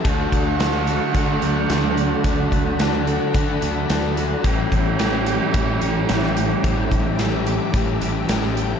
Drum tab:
HH |x-x-x-x-x-x-x-x-|x-x-x-x-x-x-x-x-|x-x-x-x-x-x-x-x-|x-x-x-x-x-x-x-x-|
SD |----o-------o---|----o-------o---|----o-------oo--|----o-------oo--|
BD |o-o-----o-------|o-o-----o-------|o-o-----o-------|o-o-----o-------|